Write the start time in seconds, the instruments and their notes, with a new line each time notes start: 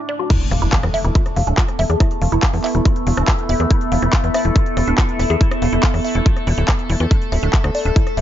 Already playing: ambient pad A3 D4 D5 A5, synth drone D4
0.09 synth arpeggio sound D5
0.20 synth arpeggio sound F#4
0.30 synth drone A3 A4, ambient pad B3, synth arpeggio sound E4, kick, closed hi-hat, crash, impact
0.41 closed hi-hat
0.51 analog synth bass E1, synth arpeggio sound F5, cross-stick, open hi-hat
0.60 analog synth bass E1, ambient pad E4, synth arpeggio sound E4, closed hi-hat
0.73 synth arpeggio sound F5, kick, clap, closed hi-hat
0.83 analog synth bass E2, cross-stick, closed hi-hat
0.88 ambient pad B5
0.94 synth arpeggio sound E5, open hi-hat
1.05 analog synth bass E1, synth arpeggio sound E4, closed hi-hat
1.15 synth arpeggio sound F4, kick, closed hi-hat
1.26 cross-stick, closed hi-hat
1.35 analog synth bass E1, ambient pad E5, synth arpeggio sound F5, open hi-hat
1.47 analog synth bass D1, synth arpeggio sound D4, closed hi-hat
1.58 synth arpeggio sound F4, kick, clap, closed hi-hat
1.68 cross-stick, closed hi-hat
1.79 analog synth bass E1, synth arpeggio sound E5, open hi-hat
1.90 analog synth bass E2, synth arpeggio sound G#4, closed hi-hat
2.00 synth arpeggio sound E4, kick, cross-stick, closed hi-hat
2.11 closed hi-hat
2.22 analog synth bass E1, synth arpeggio sound F5, open hi-hat
2.32 analog synth bass E1, synth arpeggio sound E4, closed hi-hat
2.43 synth arpeggio sound F5, kick, cross-stick, clap, closed hi-hat
2.54 analog synth bass E2, open hi-hat
2.64 synth arpeggio sound E5, clap, open hi-hat
2.75 analog synth bass E1, synth arpeggio sound E4, closed hi-hat
2.85 synth arpeggio sound F4, kick, cross-stick, closed hi-hat
2.96 closed hi-hat
3.07 analog synth bass E1, synth arpeggio sound F5, open hi-hat
3.17 analog synth bass D1, synth arpeggio sound D4, cross-stick, closed hi-hat
3.28 synth arpeggio sound F4, kick, clap, closed hi-hat
3.39 closed hi-hat
3.49 analog synth bass E1, synth arpeggio sound E5, open hi-hat
3.60 analog synth bass E2, synth arpeggio sound G#4, cross-stick, closed hi-hat
3.71 synth arpeggio sound E4, kick, closed hi-hat
3.81 closed hi-hat
3.92 analog synth bass E1, synth arpeggio sound F5, open hi-hat
4.02 analog synth bass E1, synth arpeggio sound E4, cross-stick, closed hi-hat
4.13 synth arpeggio sound F5, kick, clap, closed hi-hat
4.24 analog synth bass E2, closed hi-hat
4.34 synth arpeggio sound E5, cross-stick, open hi-hat
4.45 analog synth bass E1, synth arpeggio sound E4, closed hi-hat
4.56 synth arpeggio sound F4, kick, closed hi-hat
4.66 closed hi-hat
4.77 analog synth bass E1, synth arpeggio sound F5, cross-stick, open hi-hat
4.88 analog synth bass D1, synth arpeggio sound D4, closed hi-hat
4.98 synth arpeggio sound F4, kick, clap, closed hi-hat
5.09 closed hi-hat
5.19 analog synth bass E1, synth arpeggio sound E5, cross-stick, open hi-hat
5.30 analog synth bass E2, synth arpeggio sound G#4, closed hi-hat
5.41 synth arpeggio sound E4, kick, closed hi-hat
5.51 cross-stick, closed hi-hat
5.62 analog synth bass E1, synth arpeggio sound F5, open hi-hat
5.73 analog synth bass E1, synth arpeggio sound E4, closed hi-hat
5.83 synth arpeggio sound F5, kick, clap, closed hi-hat
5.94 analog synth bass E2, cross-stick, open hi-hat
6.05 synth arpeggio sound E5, open hi-hat
6.15 analog synth bass E1, synth arpeggio sound E4, closed hi-hat
6.26 synth arpeggio sound F4, kick, closed hi-hat
6.37 cross-stick, closed hi-hat
6.47 analog synth bass E1, synth arpeggio sound E4, open hi-hat
6.58 analog synth bass D1, synth arpeggio sound E4, closed hi-hat
6.68 synth arpeggio sound E4, kick, cross-stick, clap, closed hi-hat
6.79 closed hi-hat
6.90 analog synth bass E1, synth arpeggio sound E4, open hi-hat
7.00 analog synth bass E2, synth arpeggio sound F4, closed hi-hat
7.11 ambient pad A3, synth arpeggio sound D4, kick, closed hi-hat
7.22 closed hi-hat
7.32 analog synth bass D1, synth arpeggio sound E5, cross-stick, open hi-hat
7.38 ambient pad D5
7.43 analog synth bass D1, synth arpeggio sound D4, closed hi-hat
7.53 ambient pad D4, synth arpeggio sound E5, kick, clap, closed hi-hat
7.64 analog synth bass D2, cross-stick, closed hi-hat
7.75 synth arpeggio sound D5, open hi-hat
7.85 analog synth bass D1, synth arpeggio sound D4, closed hi-hat
7.96 synth arpeggio sound E4, kick, closed hi-hat
8.07 cross-stick, closed hi-hat
8.17 analog synth bass D1, synth arpeggio sound E5, open hi-hat